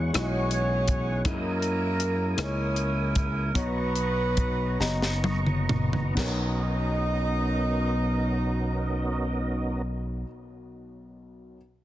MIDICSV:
0, 0, Header, 1, 6, 480
1, 0, Start_track
1, 0, Key_signature, 5, "major"
1, 0, Tempo, 749064
1, 802, Time_signature, 6, 3, 24, 8
1, 1770, Tempo, 805369
1, 2730, Tempo, 868307
1, 3210, Tempo, 928793
1, 3690, Tempo, 961538
1, 6522, End_track
2, 0, Start_track
2, 0, Title_t, "Tonewheel organ"
2, 0, Program_c, 0, 16
2, 0, Note_on_c, 0, 64, 51
2, 0, Note_on_c, 0, 68, 56
2, 0, Note_on_c, 0, 78, 47
2, 0, Note_on_c, 0, 85, 60
2, 783, Note_off_c, 0, 85, 0
2, 790, Note_off_c, 0, 78, 0
2, 791, Note_off_c, 0, 68, 0
2, 798, Note_on_c, 0, 70, 60
2, 800, Note_on_c, 0, 80, 51
2, 800, Note_on_c, 0, 87, 62
2, 2219, Note_off_c, 0, 64, 0
2, 2224, Note_off_c, 0, 70, 0
2, 2225, Note_off_c, 0, 80, 0
2, 2225, Note_off_c, 0, 87, 0
2, 2239, Note_on_c, 0, 82, 49
2, 2242, Note_on_c, 0, 71, 52
2, 2244, Note_on_c, 0, 85, 61
2, 2245, Note_on_c, 0, 75, 50
2, 3677, Note_off_c, 0, 82, 0
2, 3678, Note_off_c, 0, 71, 0
2, 3679, Note_off_c, 0, 75, 0
2, 3679, Note_off_c, 0, 85, 0
2, 3691, Note_on_c, 0, 61, 53
2, 3692, Note_on_c, 0, 66, 45
2, 3692, Note_on_c, 0, 70, 50
2, 3694, Note_on_c, 0, 59, 48
2, 3694, Note_on_c, 0, 75, 60
2, 5511, Note_off_c, 0, 61, 0
2, 5511, Note_off_c, 0, 66, 0
2, 5511, Note_off_c, 0, 70, 0
2, 5512, Note_off_c, 0, 59, 0
2, 5512, Note_off_c, 0, 75, 0
2, 6522, End_track
3, 0, Start_track
3, 0, Title_t, "Horn section"
3, 0, Program_c, 1, 61
3, 99, Note_on_c, 1, 68, 65
3, 101, Note_on_c, 1, 66, 69
3, 102, Note_on_c, 1, 61, 83
3, 102, Note_on_c, 1, 73, 91
3, 781, Note_off_c, 1, 68, 0
3, 782, Note_off_c, 1, 66, 0
3, 783, Note_off_c, 1, 61, 0
3, 783, Note_off_c, 1, 73, 0
3, 818, Note_on_c, 1, 61, 61
3, 820, Note_on_c, 1, 64, 58
3, 822, Note_on_c, 1, 58, 78
3, 822, Note_on_c, 1, 70, 84
3, 1506, Note_off_c, 1, 61, 0
3, 1508, Note_off_c, 1, 64, 0
3, 1534, Note_off_c, 1, 58, 0
3, 1534, Note_off_c, 1, 70, 0
3, 1541, Note_on_c, 1, 64, 57
3, 1543, Note_on_c, 1, 70, 57
3, 1548, Note_on_c, 1, 61, 68
3, 1548, Note_on_c, 1, 73, 74
3, 2014, Note_off_c, 1, 61, 0
3, 2014, Note_off_c, 1, 73, 0
3, 2224, Note_off_c, 1, 64, 0
3, 2225, Note_off_c, 1, 70, 0
3, 2252, Note_on_c, 1, 59, 89
3, 2252, Note_on_c, 1, 71, 97
3, 2254, Note_on_c, 1, 63, 69
3, 2255, Note_on_c, 1, 66, 64
3, 3194, Note_off_c, 1, 59, 0
3, 3194, Note_off_c, 1, 71, 0
3, 3195, Note_off_c, 1, 63, 0
3, 3196, Note_off_c, 1, 66, 0
3, 3697, Note_on_c, 1, 63, 67
3, 3697, Note_on_c, 1, 75, 73
3, 5514, Note_off_c, 1, 63, 0
3, 5514, Note_off_c, 1, 75, 0
3, 6522, End_track
4, 0, Start_track
4, 0, Title_t, "Upright piano"
4, 0, Program_c, 2, 0
4, 0, Control_c, 2, 64, 127
4, 0, Note_on_c, 2, 52, 53
4, 0, Note_on_c, 2, 56, 61
4, 0, Note_on_c, 2, 64, 55
4, 0, Note_on_c, 2, 66, 57
4, 0, Note_on_c, 2, 73, 67
4, 65, Note_off_c, 2, 52, 0
4, 84, Note_off_c, 2, 56, 0
4, 84, Note_on_c, 2, 56, 57
4, 86, Note_off_c, 2, 64, 0
4, 86, Note_on_c, 2, 64, 53
4, 89, Note_off_c, 2, 66, 0
4, 89, Note_on_c, 2, 66, 54
4, 91, Note_off_c, 2, 73, 0
4, 91, Note_on_c, 2, 73, 54
4, 132, Note_off_c, 2, 73, 0
4, 132, Note_on_c, 2, 75, 63
4, 587, Note_off_c, 2, 56, 0
4, 588, Note_off_c, 2, 64, 0
4, 589, Note_off_c, 2, 66, 0
4, 611, Note_off_c, 2, 75, 0
4, 797, Note_on_c, 2, 56, 52
4, 799, Note_on_c, 2, 64, 61
4, 802, Note_on_c, 2, 68, 53
4, 805, Note_on_c, 2, 75, 63
4, 810, Control_c, 2, 64, 0
4, 839, Note_on_c, 2, 58, 65
4, 842, Note_off_c, 2, 56, 0
4, 913, Control_c, 2, 64, 127
4, 1305, Note_off_c, 2, 64, 0
4, 1307, Note_off_c, 2, 68, 0
4, 1308, Note_off_c, 2, 75, 0
4, 1325, Note_off_c, 2, 58, 0
4, 1516, Note_on_c, 2, 58, 57
4, 1521, Note_on_c, 2, 64, 51
4, 1525, Note_on_c, 2, 68, 52
4, 1527, Note_on_c, 2, 75, 60
4, 2024, Note_off_c, 2, 58, 0
4, 2026, Note_off_c, 2, 64, 0
4, 2028, Note_off_c, 2, 68, 0
4, 2029, Note_off_c, 2, 75, 0
4, 2236, Note_on_c, 2, 59, 63
4, 2240, Note_on_c, 2, 63, 51
4, 2242, Note_on_c, 2, 47, 47
4, 2242, Note_on_c, 2, 82, 50
4, 2246, Note_on_c, 2, 73, 67
4, 2247, Control_c, 2, 64, 0
4, 2360, Control_c, 2, 64, 127
4, 2753, Note_off_c, 2, 59, 0
4, 2755, Note_off_c, 2, 63, 0
4, 2756, Note_off_c, 2, 82, 0
4, 2758, Note_off_c, 2, 73, 0
4, 2946, Note_off_c, 2, 47, 0
4, 2965, Note_on_c, 2, 59, 62
4, 2967, Note_on_c, 2, 63, 61
4, 2968, Note_on_c, 2, 82, 61
4, 2972, Note_on_c, 2, 75, 74
4, 3471, Note_off_c, 2, 59, 0
4, 3472, Note_off_c, 2, 63, 0
4, 3472, Note_off_c, 2, 82, 0
4, 3474, Note_off_c, 2, 75, 0
4, 3678, Note_on_c, 2, 59, 61
4, 3685, Note_on_c, 2, 63, 54
4, 3691, Note_on_c, 2, 35, 56
4, 3696, Note_on_c, 2, 70, 51
4, 3697, Control_c, 2, 64, 0
4, 3704, Note_on_c, 2, 73, 64
4, 3791, Control_c, 2, 64, 127
4, 5705, Note_off_c, 2, 59, 0
4, 5712, Note_off_c, 2, 63, 0
4, 5717, Note_off_c, 2, 35, 0
4, 5722, Note_off_c, 2, 70, 0
4, 5730, Note_off_c, 2, 73, 0
4, 6387, Control_c, 2, 64, 0
4, 6522, End_track
5, 0, Start_track
5, 0, Title_t, "Slap bass"
5, 0, Program_c, 3, 36
5, 0, Note_on_c, 3, 40, 86
5, 65, Note_off_c, 3, 40, 0
5, 93, Note_on_c, 3, 35, 83
5, 778, Note_off_c, 3, 35, 0
5, 800, Note_on_c, 3, 42, 91
5, 1498, Note_off_c, 3, 42, 0
5, 1522, Note_on_c, 3, 37, 81
5, 2215, Note_off_c, 3, 37, 0
5, 2241, Note_on_c, 3, 35, 72
5, 2945, Note_off_c, 3, 35, 0
5, 2965, Note_on_c, 3, 30, 78
5, 3669, Note_off_c, 3, 30, 0
5, 3690, Note_on_c, 3, 35, 72
5, 5716, Note_off_c, 3, 35, 0
5, 6522, End_track
6, 0, Start_track
6, 0, Title_t, "Drums"
6, 92, Note_on_c, 9, 42, 77
6, 98, Note_on_c, 9, 37, 91
6, 156, Note_off_c, 9, 42, 0
6, 162, Note_off_c, 9, 37, 0
6, 326, Note_on_c, 9, 42, 45
6, 390, Note_off_c, 9, 42, 0
6, 561, Note_on_c, 9, 42, 61
6, 567, Note_on_c, 9, 36, 76
6, 625, Note_off_c, 9, 42, 0
6, 631, Note_off_c, 9, 36, 0
6, 801, Note_on_c, 9, 42, 60
6, 802, Note_on_c, 9, 36, 90
6, 865, Note_off_c, 9, 42, 0
6, 866, Note_off_c, 9, 36, 0
6, 1040, Note_on_c, 9, 42, 37
6, 1104, Note_off_c, 9, 42, 0
6, 1281, Note_on_c, 9, 42, 60
6, 1345, Note_off_c, 9, 42, 0
6, 1524, Note_on_c, 9, 42, 73
6, 1530, Note_on_c, 9, 37, 93
6, 1588, Note_off_c, 9, 42, 0
6, 1594, Note_off_c, 9, 37, 0
6, 1771, Note_on_c, 9, 42, 44
6, 1830, Note_off_c, 9, 42, 0
6, 2004, Note_on_c, 9, 42, 55
6, 2006, Note_on_c, 9, 36, 77
6, 2063, Note_off_c, 9, 42, 0
6, 2066, Note_off_c, 9, 36, 0
6, 2241, Note_on_c, 9, 36, 87
6, 2243, Note_on_c, 9, 42, 60
6, 2301, Note_off_c, 9, 36, 0
6, 2302, Note_off_c, 9, 42, 0
6, 2481, Note_on_c, 9, 42, 40
6, 2541, Note_off_c, 9, 42, 0
6, 2728, Note_on_c, 9, 42, 60
6, 2731, Note_on_c, 9, 36, 74
6, 2783, Note_off_c, 9, 42, 0
6, 2786, Note_off_c, 9, 36, 0
6, 2970, Note_on_c, 9, 38, 43
6, 3025, Note_off_c, 9, 38, 0
6, 3090, Note_on_c, 9, 38, 46
6, 3145, Note_off_c, 9, 38, 0
6, 3208, Note_on_c, 9, 48, 64
6, 3260, Note_off_c, 9, 48, 0
6, 3326, Note_on_c, 9, 47, 55
6, 3377, Note_off_c, 9, 47, 0
6, 3444, Note_on_c, 9, 45, 70
6, 3495, Note_off_c, 9, 45, 0
6, 3567, Note_on_c, 9, 43, 59
6, 3618, Note_off_c, 9, 43, 0
6, 3688, Note_on_c, 9, 55, 63
6, 3690, Note_on_c, 9, 36, 74
6, 3693, Note_on_c, 9, 38, 74
6, 3738, Note_off_c, 9, 55, 0
6, 3740, Note_off_c, 9, 36, 0
6, 3743, Note_off_c, 9, 38, 0
6, 6522, End_track
0, 0, End_of_file